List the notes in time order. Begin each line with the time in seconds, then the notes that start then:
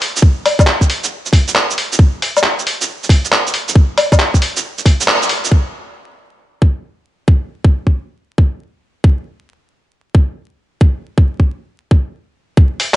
0.02 open hi-hat
0.17 shaker
0.22 kick
0.46 open hi-hat, low woodblock
0.59 kick, low woodblock, shaker
0.67 clap
0.81 kick, shaker
0.90 open hi-hat
1.04 shaker
1.26 shaker
1.33 kick, open hi-hat
1.48 shaker
1.55 clap
1.71 shaker
1.78 open hi-hat
1.93 shaker
1.99 kick
2.22 open hi-hat
2.37 low woodblock, shaker
2.44 clap
2.59 shaker
2.67 open hi-hat
2.81 shaker
3.03 shaker
3.09 kick, open hi-hat
3.25 shaker
3.32 clap
3.47 shaker
3.54 open hi-hat
3.68 shaker
3.75 kick
3.98 open hi-hat, low woodblock
4.12 kick, low woodblock, shaker
4.20 clap
4.34 kick, shaker
4.42 open hi-hat
4.57 shaker
4.78 shaker
4.86 kick, open hi-hat
5.01 shaker
5.08 clap
5.22 shaker
5.29 open hi-hat
5.45 shaker
5.52 kick
6.62 kick
7.28 kick
7.64 kick
7.87 kick
8.38 kick
9.04 kick
10.15 kick
10.81 kick
11.18 kick
11.40 kick
11.91 kick
12.57 kick
12.80 open hi-hat